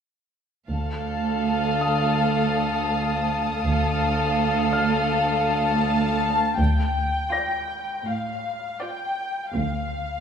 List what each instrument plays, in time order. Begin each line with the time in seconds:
0.70 cello section D2, double bass section D2, violin section A4 F5 A5
1.45 violin section D#6
1.81 grand piano D#6
3.63 cello section D2, double bass section D2, violin section A4 F5
4.73 grand piano F5 F6
5.46 violin section A5
6.58 cello section D2, double bass section D2, violin section G5
7.32 violin section F4 D5, grand piano A#6
8.06 cello section A2, violin section F5
8.80 violin section F4 D5 G5
9.54 cello section D2, double bass section D2, violin section F5